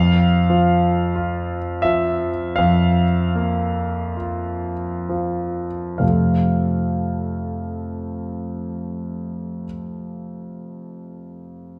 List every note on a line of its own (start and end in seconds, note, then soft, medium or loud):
0.00 2.52 F2 medium
0.00 1.83 F5 medium
0.50 1.56 F3 soft
1.15 2.29 F4 soft
1.82 3.04 F3 soft
1.82 2.57 E5 medium
2.56 5.97 F2 soft
2.56 4.16 F5 medium
3.35 4.71 A#3 soft
4.17 5.66 F4 soft
5.09 6.01 F3 soft
5.98 9.64 F2 soft
5.98 9.64 C3 soft
5.98 9.65 A3 soft
5.98 9.65 C4 soft
5.98 9.65 F4 soft
5.98 9.65 A4 soft
5.98 9.63 F5 soft